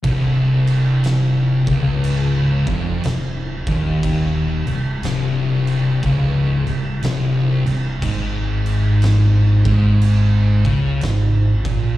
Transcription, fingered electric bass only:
X:1
M:4/4
L:1/8
Q:"Swing" 1/4=60
K:Cphr
V:1 name="Fingered electric bass" clef=bass
C,,,3 D,,,2 F,,, C,,, E,,,- | E,,, C,,, C,,,2 D,,, C,,, C,,, C,,, | A,,,3 A,,,2 D,, A,,, B,,, |]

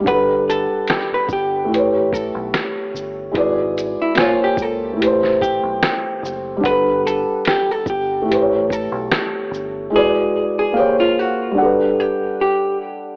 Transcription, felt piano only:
X:1
M:4/4
L:1/8
Q:"Swing 16ths" 1/4=73
K:G
V:1 name="Felt piano"
[G,DABf]4 [A,EGB^c]4 | [^G,EFBd]2 [_B,=Fc_d_a]2 [=A,E=G=Bc]4 | [G,DABf]4 [A,EGBc^c]4 | [^G,EFBd]2 [_B,_Ac_d=f]2 [=G,=D=A=B^f]4 |]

